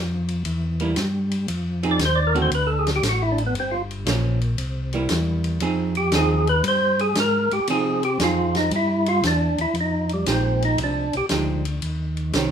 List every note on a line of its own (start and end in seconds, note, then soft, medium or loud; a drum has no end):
0.00 0.43 F2 medium
0.28 ride soft
0.45 0.95 E2 medium
0.45 ride medium
0.80 0.95 G3 medium
0.80 0.95 A#3 medium
0.80 0.96 E4 medium
0.80 ride soft
0.96 1.47 G2 loud
0.96 snare medium
0.96 hi-hat pedal medium
0.96 ride medium
1.31 ride medium
1.48 1.98 F2 medium
1.48 ride medium
1.83 1.98 F3 medium
1.83 1.98 C4 medium
1.83 1.99 D#4 medium
1.83 1.99 G#4 medium
1.83 ride soft
1.91 1.99 D5 medium
1.99 2.50 D#2 loud
1.99 snare medium
1.99 hi-hat pedal medium
1.99 ride medium
2.05 2.20 C5 medium
2.15 2.34 D5 loud
2.27 2.39 A#4 medium
2.34 2.50 D3 medium
2.34 2.50 A3 medium
2.34 2.50 C4 medium
2.34 2.50 F#4 medium
2.34 ride soft
2.42 2.51 C5 loud
2.51 3.01 D2 medium
2.51 2.70 B4 medium
2.51 ride medium
2.67 2.85 A4 medium
2.79 2.91 G#4 medium
2.87 snare medium
2.87 ride medium
2.96 3.03 G4 medium
3.03 3.53 A1 medium
3.03 snare medium
3.03 hi-hat pedal medium
3.03 ride medium
3.09 3.23 F#4 medium
3.22 3.39 E4 medium
3.32 3.43 D4 medium
3.38 ride soft
3.46 3.55 B3 medium
3.54 4.05 G1 medium
3.54 ride medium
3.60 3.75 C4 medium
3.71 3.82 F4 medium
3.91 ride soft
4.06 4.56 A#1 loud
4.06 4.38 F3 medium
4.06 4.39 A#3 medium
4.06 4.39 C#4 medium
4.06 snare medium
4.06 hi-hat pedal medium
4.06 ride medium
4.41 ride soft
4.58 5.08 C2 medium
4.58 ride medium
4.93 5.58 G3 medium
4.93 5.59 A#3 medium
4.93 5.59 E4 medium
4.93 ride soft
5.09 5.60 E2 loud
5.09 snare medium
5.09 hi-hat pedal medium
5.09 ride medium
5.44 ride soft
5.60 6.11 F2 medium
5.60 5.93 F3 medium
5.60 5.93 C4 medium
5.60 5.94 D#4 medium
5.60 5.94 G#4 medium
5.60 ride medium
5.95 6.13 G4 loud
5.95 ride soft
6.12 6.63 D#2 loud
6.12 6.45 F3 medium
6.12 6.45 C4 medium
6.12 6.46 D#4 medium
6.12 6.46 G#4 medium
6.12 6.48 G#4 medium
6.12 snare medium
6.12 hi-hat pedal medium
6.12 ride medium
6.47 6.65 B4 loud
6.47 ride soft
6.63 7.14 G2 medium
6.63 ride medium
6.68 7.01 C5 loud
6.99 7.16 G#4 medium
6.99 ride soft
7.15 7.49 G#2 medium
7.15 snare medium
7.15 hi-hat pedal medium
7.15 ride medium
7.20 7.52 A#4 loud
7.51 7.60 G#2 soft
7.51 7.68 G4 medium
7.51 ride medium
7.67 8.18 C3 medium
7.67 8.01 F3 medium
7.67 8.01 C4 medium
7.67 8.01 D#4 medium
7.67 8.01 G#4 medium
7.67 8.04 G#4 medium
7.67 ride medium
8.03 8.20 G4 loud
8.03 ride soft
8.20 8.70 F2 loud
8.20 8.72 F3 medium
8.20 8.72 C4 medium
8.20 8.72 D#4 medium
8.20 8.72 G#4 medium
8.20 snare medium
8.20 hi-hat pedal medium
8.20 ride medium
8.24 8.56 F4 medium
8.55 8.72 D#4 loud
8.55 snare soft
8.55 ride soft
8.71 9.22 G2 medium
8.71 ride medium
8.76 9.08 E4 medium
9.06 9.24 F4 loud
9.06 ride medium
9.23 9.56 E2 loud
9.23 snare medium
9.23 hi-hat pedal medium
9.23 ride medium
9.27 9.60 D4 medium
9.58 9.67 E2 soft
9.58 9.76 E4 medium
9.58 ride medium
9.74 10.24 F2 medium
9.74 ride medium
9.81 10.12 D#4 medium
10.09 ride soft
10.14 10.28 G3 medium
10.26 10.77 A#1 loud
10.26 11.07 F3 medium
10.26 11.07 G#3 medium
10.26 11.07 D#4 medium
10.26 11.07 G4 medium
10.26 snare medium
10.26 hi-hat pedal medium
10.26 ride medium
10.32 10.64 C4 medium
10.62 10.80 D#4 loud
10.62 ride soft
10.78 11.11 C2 medium
10.78 ride medium
10.84 11.15 D4 medium
11.13 11.22 C2 soft
11.13 11.26 G4 loud
11.13 ride medium
11.29 11.81 D2 medium
11.29 11.63 F3 medium
11.29 11.63 G#3 medium
11.29 11.63 D#4 medium
11.29 11.63 G4 medium
11.29 snare medium
11.29 hi-hat pedal medium
11.29 ride medium
11.65 ride medium
11.82 12.32 D#2 medium
11.82 ride medium
12.17 ride soft
12.33 12.51 C2 medium
12.33 12.51 D#3 medium
12.33 12.51 C#4 medium
12.33 12.51 G4 medium
12.33 12.51 C5 medium
12.33 snare medium
12.33 hi-hat pedal medium
12.33 ride medium